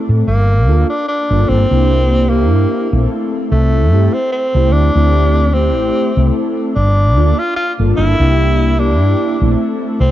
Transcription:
0.00 0.25 A3 medium
0.00 0.25 C4 medium
0.00 0.25 E4 medium
0.00 0.26 A4 loud
0.09 0.22 A2 medium
0.27 0.68 G1 loud
0.27 0.86 A#3 loud
0.67 0.83 D2 medium
0.67 0.88 A#3 medium
0.67 0.88 D4 medium
0.67 0.88 F4 medium
0.67 0.89 A4 loud
0.90 1.07 D4 loud
1.08 1.51 D4 loud
1.30 1.43 G1 medium
1.30 1.66 A#3 medium
1.30 1.66 D4 medium
1.30 1.66 F4 medium
1.30 1.66 A4 loud
1.49 1.64 G1 loud
1.49 2.31 C4 loud
1.71 2.52 C2 medium
1.71 2.25 A#3 medium
1.71 2.26 D4 medium
1.71 2.26 E4 medium
1.71 2.26 G4 loud
2.29 2.87 A#3 loud
2.29 3.11 A#3 medium
2.29 2.87 D4 medium
2.29 2.88 E4 medium
2.29 2.88 G4 loud
2.52 2.65 G2 medium
2.91 3.05 A#1 loud
2.91 3.87 A3 medium
2.91 3.88 C4 medium
2.91 3.88 E4 medium
2.91 3.89 A4 loud
3.52 3.92 C2 medium
3.52 4.15 A3 medium
3.92 4.07 G2 medium
3.92 4.12 A3 medium
3.92 4.12 C4 medium
3.92 4.13 E4 medium
3.92 4.13 G4 loud
4.14 4.32 C4 loud
4.33 4.74 C4 loud
4.54 4.73 C2 medium
4.54 4.90 A3 medium
4.54 4.90 C4 medium
4.54 4.90 E4 medium
4.54 4.91 G4 loud
4.73 4.89 D2 medium
4.73 5.56 D4 loud
4.94 5.76 D2 medium
4.94 5.49 A3 loud
4.94 5.50 C4 medium
4.94 5.50 E4 medium
4.94 5.50 G4 loud
5.53 6.11 A3 loud
5.53 6.11 C4 medium
5.53 6.35 C4 loud
5.53 6.12 E4 medium
5.53 6.12 G4 loud
5.76 5.89 A1 medium
6.16 6.30 C2 loud
6.16 6.73 A3 medium
6.16 6.74 C4 medium
6.16 6.74 E4 medium
6.16 6.74 A4 medium
6.76 7.17 G1 medium
6.76 7.40 D4 loud
7.16 7.32 D2 medium
7.16 7.36 A#3 medium
7.16 7.37 D4 medium
7.16 7.37 F4 medium
7.16 7.37 A4 loud
7.39 7.56 F4 loud
7.57 7.73 F4 loud
7.78 7.92 G1 medium
7.78 8.14 A#3 medium
7.78 8.14 D4 medium
7.78 8.15 F4 medium
7.78 8.15 A4 loud
7.97 8.13 G1 loud
7.97 8.81 E4 loud
8.19 9.01 C2 medium
8.19 8.74 A#3 medium
8.19 8.74 D4 medium
8.19 8.74 E4 medium
8.19 8.75 G4 loud
8.78 9.36 A#3 medium
8.78 9.36 D4 medium
8.78 9.60 D4 medium
8.78 9.36 E4 medium
8.78 9.37 G4 loud
9.01 9.14 G2 medium
9.40 9.54 A#1 loud
9.40 10.11 A3 medium
9.40 10.11 C4 medium
9.40 10.11 E4 medium
9.40 10.11 A4 loud
10.00 10.11 C2 medium
10.00 10.11 C4 loud

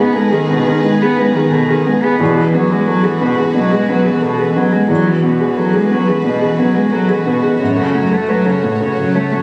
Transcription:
0.00 0.80 G#2 medium
0.00 2.21 G#3 medium
0.00 0.51 B3 medium
0.00 0.17 B3 medium
0.00 0.32 G#4 medium
0.00 2.20 G#4 medium
0.00 2.20 B4 medium
0.15 0.34 G#3 medium
0.15 0.33 A4 medium
0.32 0.52 D#3 medium
0.32 0.60 G#4 medium
0.51 0.69 B2 medium
0.51 0.78 B3 medium
0.67 0.83 D#3 medium
0.67 0.95 G#4 medium
0.83 1.12 D#3 medium
0.83 1.04 G#3 medium
1.02 1.19 B3 medium
1.02 1.29 G#4 medium
1.18 1.36 G#3 medium
1.18 1.46 B3 medium
1.35 1.52 D#3 medium
1.35 1.63 G#4 medium
1.51 1.70 B2 medium
1.51 1.70 A4 medium
1.68 1.86 D#3 medium
1.68 1.97 G#4 medium
1.85 2.04 G#3 medium
1.85 2.14 B3 medium
2.03 2.20 B3 medium
2.03 2.20 G#4 medium
2.20 3.51 E2 medium
2.20 2.39 B2 medium
2.20 4.87 G#3 medium
2.20 4.89 F#4 medium
2.20 4.87 B4 medium
2.37 2.56 E3 medium
2.37 2.64 G#4 medium
2.54 2.73 F#3 medium
2.54 2.81 B3 medium
2.71 2.88 G#3 medium
2.71 2.98 G#4 medium
2.87 3.05 F#3 medium
2.87 3.04 A4 medium
3.03 3.23 E3 medium
3.03 3.31 G#4 medium
3.21 3.39 B2 medium
3.21 3.48 B3 medium
3.38 3.54 E3 medium
3.38 3.65 G#4 medium
3.54 3.82 B2 medium
3.54 3.73 F#3 medium
3.71 3.90 G#3 medium
3.71 3.99 G#4 medium
3.88 4.08 F#3 medium
3.88 4.16 B3 medium
4.05 4.25 E3 medium
4.05 4.32 G#4 soft
4.22 4.42 B2 medium
4.22 4.39 A4 medium
4.38 4.57 E3 medium
4.38 4.66 G#4 soft
4.56 4.74 F#3 medium
4.56 4.83 B3 medium
4.71 4.89 G#3 medium
4.71 4.99 G#4 soft
4.89 6.20 E2 medium
4.89 5.09 F#3 medium
4.89 7.56 G#3 medium
4.89 9.43 F#4 medium
4.89 7.56 B4 medium
5.05 5.26 E3 medium
5.05 5.33 F#4 soft
5.23 5.43 B2 soft
5.23 5.50 B3 soft
5.40 5.59 E3 medium
5.40 5.67 G#4 medium
5.57 5.77 F#3 medium
5.57 5.74 A4 soft
5.74 5.94 G#3 medium
5.74 6.01 G#4 soft
5.91 6.09 F#3 medium
5.91 6.18 B3 soft
6.08 6.25 E3 medium
6.08 6.35 G#4 soft
6.24 6.52 B2 soft
6.24 6.43 B2 medium
6.41 6.60 E3 medium
6.41 6.69 G#4 soft
6.59 6.76 F#3 medium
6.59 6.86 B3 soft
6.74 6.93 G#3 medium
6.74 7.03 G#4 soft
6.91 7.10 F#3 medium
6.91 7.09 A4 soft
7.08 7.28 E3 soft
7.08 7.36 G#4 soft
7.26 7.45 B2 soft
7.26 7.53 B3 soft
7.43 7.60 E3 soft
7.43 7.60 G#4 soft
7.59 8.93 F#2 medium
7.59 7.81 A2 soft
7.59 9.43 A3 soft
7.59 9.43 C#5 soft
7.76 7.98 C#3 soft
7.76 8.04 A4 soft
7.94 8.15 F#3 soft
7.94 8.22 A3 soft
8.11 8.31 A3 soft
8.11 8.38 A4 soft
8.28 8.47 F#3 soft
8.28 8.45 B4 soft
8.45 8.64 C#3 soft
8.45 8.73 A4 soft
8.63 8.83 A2 soft
8.63 8.90 A3 soft
8.81 8.97 C#3 soft
8.81 9.08 A4 soft
8.97 9.25 C#3 soft
8.97 9.17 F#3 soft
9.15 9.33 A3 soft
9.15 9.43 A4 soft
9.32 9.43 F#3 soft
9.32 9.43 A3 soft

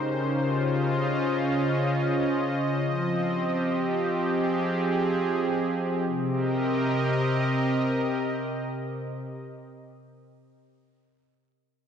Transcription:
0.00 2.82 C#3 medium
0.00 2.82 C#4 medium
0.00 0.73 D#4 medium
0.00 0.87 G4 medium
0.00 0.88 A#4 medium
0.00 4.12 C5 medium
0.32 3.80 F4 medium
0.71 6.06 D#5 medium
2.82 6.06 F3 medium
2.96 6.06 C4 medium
3.28 6.07 G4 medium
4.26 6.06 G#4 medium
6.07 9.22 C3 medium
6.13 9.28 C4 medium
6.19 9.34 G4 medium
6.25 9.40 A#4 medium
6.31 9.46 D#5 medium

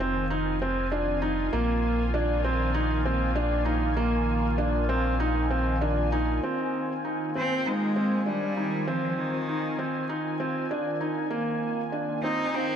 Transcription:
0.00 1.50 F1 medium
0.00 12.76 D#3 medium
0.00 2.65 C4 medium
0.00 0.24 C4 medium
0.00 12.76 F4 medium
0.00 12.76 G#5 medium
0.30 0.55 D#4 medium
0.62 0.86 C4 medium
0.92 1.16 D4 medium
1.22 1.46 D#4 medium
1.53 6.40 A#1 medium
1.53 2.01 A#3 medium
1.66 8.38 A#3 medium
2.14 2.38 D4 medium
2.44 2.69 C4 medium
2.74 2.99 D#4 medium
3.05 3.30 C4 medium
3.36 3.60 D4 medium
3.65 3.90 D#4 medium
3.97 4.46 A#3 medium
4.58 4.83 D4 medium
4.89 5.14 C4 medium
5.20 5.44 D#4 medium
5.50 5.75 C4 medium
5.81 6.06 D4 medium
6.12 6.37 D#4 medium
6.43 6.92 C4 medium
6.66 12.32 C4 medium
7.05 7.29 D#4 medium
7.35 7.59 C4 medium
7.35 7.69 C4 medium
7.66 8.29 G#3 medium
7.66 7.90 D#4 medium
7.96 8.20 C4 medium
8.26 8.89 G3 medium
8.26 8.51 D4 medium
8.57 8.81 D#4 medium
8.87 9.20 F3 medium
8.87 9.36 C4 medium
9.18 10.10 D#3 medium
9.49 9.73 D#4 medium
9.79 10.03 C4 medium
10.09 10.34 D#4 medium
10.40 10.65 C4 medium
10.71 10.95 D4 medium
11.01 11.25 D#4 medium
11.30 11.80 A#3 medium
11.41 12.76 A#3 medium
11.92 12.17 D4 medium
12.23 12.48 C4 medium
12.23 12.56 D#4 medium
12.54 12.76 C4 medium
12.54 12.76 D#4 medium

